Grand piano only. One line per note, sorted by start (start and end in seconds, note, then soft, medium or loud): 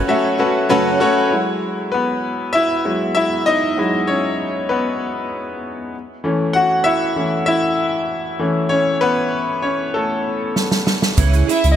0.00 0.08 C#4 loud
0.00 0.08 F#4 loud
0.00 0.09 A4 loud
0.00 0.40 B4 medium
0.00 1.01 C#5 loud
0.00 0.09 E5 loud
0.08 0.37 C#4 medium
0.08 0.37 F#4 medium
0.08 0.38 A4 medium
0.08 0.38 E5 loud
0.39 0.68 C#4 medium
0.39 0.68 F#4 medium
0.39 0.68 A4 medium
0.39 0.68 B4 medium
0.69 0.98 C#4 loud
0.69 0.99 F#4 loud
0.69 0.99 A4 loud
0.69 0.99 B4 loud
1.00 1.29 C#4 loud
1.00 1.30 F#4 loud
1.00 1.30 A4 medium
1.00 1.30 C#5 loud
1.31 2.83 F#3 medium
1.31 2.84 G#3 medium
1.31 2.54 E4 medium
1.92 2.51 B3 medium
1.92 2.56 B4 medium
2.53 2.84 E4 medium
2.53 3.13 E5 loud
2.85 3.13 F#3 soft
2.85 3.13 G#3 soft
2.85 3.13 E4 medium
3.15 3.45 E4 medium
3.15 3.47 E5 loud
3.46 4.05 D#4 medium
3.46 4.10 D#5 loud
3.78 5.90 F#3 medium
3.78 5.90 G#3 soft
3.78 5.90 E4 medium
4.07 4.67 C#4 medium
4.07 4.72 C#5 medium
4.69 5.59 B3 medium
4.69 5.58 B4 medium
6.24 6.65 E3 medium
6.24 6.65 A3 medium
6.24 6.66 C#4 medium
6.53 6.63 F#4 medium
6.53 6.61 F#5 loud
6.84 7.44 E4 medium
6.84 7.45 E5 loud
7.16 7.44 E3 medium
7.16 7.44 A3 soft
7.16 7.45 C#4 medium
7.46 8.67 E4 medium
7.46 8.74 E5 loud
8.39 10.82 E3 medium
8.39 9.94 A3 medium
8.39 8.70 C#4 medium
8.69 9.00 C#4 medium
8.69 9.02 C#5 loud
9.01 9.60 B3 medium
9.01 9.65 B4 loud
9.62 9.92 C#4 medium
9.62 9.95 C#5 medium
9.94 10.84 A3 medium
9.94 10.83 A4 medium
11.72 11.76 D#5 medium